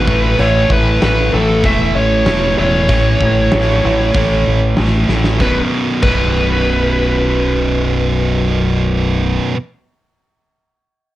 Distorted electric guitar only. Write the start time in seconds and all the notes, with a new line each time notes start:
0.07 A2 E3 A3
0.40 A2 E3 A3
1.01 A2 E3 A3
1.33 A2 E3 A3
1.64 A2 E3 A3
2.27 A2 E3 A3
2.58 A2 E3 A3
2.89 A2 E3 A3
3.52 A2 E3 A3
3.84 A2 E3 A3
4.14 A2 E3 A3
4.77 A2 E3 A3
5.09 A2 E3 A3
5.40 B1 F#2 B2
6.03 B1 F#2 B2